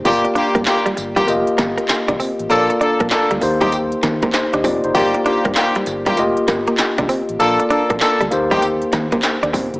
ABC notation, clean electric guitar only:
X:1
M:4/4
L:1/16
Q:"Swing 16ths" 1/4=98
K:Eblyd
V:1 name="Clean electric guitar"
z2 D B, z G, z G, z2 B, B, z D C z | z2 D B, z G, z G, z2 B, B, z D C z | z2 D B, z G, z G, z2 B, B, z D C z | z2 D B, z G, z G, z2 B, B, z D C z |]